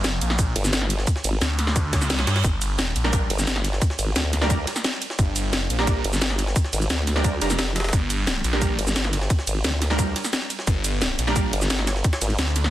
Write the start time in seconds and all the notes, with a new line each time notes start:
Already playing: G1
0.04 snare, closed hi-hat, ride, cabasa
0.21 A#1, closed hi-hat, ride, cabasa
0.30 snare
0.39 kick, closed hi-hat, ride, cabasa
0.56 G1, closed hi-hat, ride
0.64 snare, cabasa
0.73 snare, closed hi-hat, ride, cabasa
0.81 snare
0.90 closed hi-hat, ride, cabasa
0.99 snare
1.07 kick, closed hi-hat, ride, cabasa
1.16 snare
1.24 G#1, closed hi-hat, ride, cabasa
1.41 D2, snare, closed hi-hat, ride, cabasa
1.59 snare, closed hi-hat, ride, cabasa
1.67 snare
1.76 kick, closed hi-hat, ride, reverse cymbal, cabasa
1.93 kick, snare, closed hi-hat, ride, cabasa
2.01 C#2, snare, cabasa
2.10 snare, closed hi-hat, ride, cabasa
2.19 snare, ride
2.27 G2, snare, closed hi-hat, ride, cabasa
2.36 snare, ride
2.44 G1, kick, closed hi-hat, ride, cabasa
2.62 closed hi-hat, ride, cabasa
2.79 snare, closed hi-hat, ride, cabasa
2.96 A#1, closed hi-hat, ride, cabasa
3.04 G3 D4 A#4, snare
3.13 kick, closed hi-hat, ride, cabasa
3.30 G1, closed hi-hat, ride
3.39 snare, cabasa
3.47 snare, closed hi-hat, ride, cabasa
3.56 snare
3.64 snare, closed hi-hat, ride, cabasa
3.73 snare
3.82 kick, closed hi-hat, ride, cabasa
3.90 snare
3.99 G#1, closed hi-hat, ride, cabasa
4.16 D2, snare, closed hi-hat, ride, cabasa
4.33 snare, closed hi-hat, ride, cabasa
4.42 G3 D4 A#4, snare
4.50 kick, closed hi-hat, ride, cabasa
4.67 snare, closed hi-hat, ride
4.76 snare, cabasa
4.84 snare, closed hi-hat, ride, cabasa
4.93 snare
5.02 closed hi-hat, ride, cabasa
5.10 snare
5.19 G1, kick, closed hi-hat, ride, cabasa
5.36 closed hi-hat, ride, cabasa
5.53 snare, closed hi-hat, ride, cabasa
5.70 A#1, closed hi-hat, ride, cabasa
5.79 G3 D4 A#4, snare
5.87 kick, closed hi-hat, ride, cabasa
6.04 G1, closed hi-hat, ride
6.13 snare, cabasa
6.22 snare, closed hi-hat, ride, cabasa
6.30 snare
6.39 snare, closed hi-hat, ride, cabasa
6.47 snare
6.56 kick, closed hi-hat, ride, cabasa
6.64 snare
6.73 G#1, closed hi-hat, ride, cabasa
6.82 cabasa
6.90 D2, snare, closed hi-hat, ride, cabasa
7.07 snare, closed hi-hat, ride, cabasa
7.16 G3 D4 A#4, snare
7.24 kick, closed hi-hat, ride, cabasa
7.42 F1 G3 D4 A#4, snare, closed hi-hat, ride, cabasa
7.50 snare, cabasa
7.59 snare, closed hi-hat, ride, cabasa
7.67 snare
7.76 snare, closed hi-hat, ride, cabasa
7.80 snare, ride
7.84 snare, ride
7.89 snare, ride
7.93 G1, kick, closed hi-hat, ride, cabasa
8.10 closed hi-hat, ride, cabasa
8.27 snare, closed hi-hat, ride, cabasa
8.44 A#1, closed hi-hat, ride, cabasa
8.53 G3 D4 A#4, snare
8.62 kick, closed hi-hat, ride, cabasa
8.79 G1, closed hi-hat, ride
8.87 snare, cabasa
8.96 snare, closed hi-hat, ride, cabasa
9.04 snare
9.13 snare, closed hi-hat, ride, cabasa
9.21 snare
9.30 kick, closed hi-hat, ride, cabasa
9.39 snare
9.47 G#1, closed hi-hat, ride, cabasa
9.64 D2, snare, closed hi-hat, ride, cabasa
9.82 snare, closed hi-hat, ride, cabasa
9.90 G3 D4 A#4, snare
9.99 kick, closed hi-hat, ride, cabasa
10.16 snare, closed hi-hat, ride
10.24 snare, cabasa
10.33 snare, closed hi-hat, ride, cabasa
10.42 snare
10.50 closed hi-hat, ride, cabasa
10.59 snare
10.67 G1, kick, closed hi-hat, ride, cabasa
10.84 closed hi-hat, ride, cabasa
11.02 snare, closed hi-hat, ride, cabasa
11.19 A#1, closed hi-hat, ride, cabasa
11.27 G3 D4 A#4, snare
11.36 kick, closed hi-hat, ride, cabasa
11.53 G1, closed hi-hat, ride
11.62 snare, cabasa
11.70 snare, closed hi-hat, ride, cabasa
11.79 snare
11.87 snare, closed hi-hat, ride, cabasa
11.96 snare
12.04 kick, closed hi-hat, ride, cabasa
12.13 snare, ride
12.21 G#1, snare, closed hi-hat, ride, cabasa
12.30 ride
12.39 D2, snare, closed hi-hat, ride, cabasa
12.47 snare
12.56 snare, closed hi-hat, ride, cabasa
12.64 snare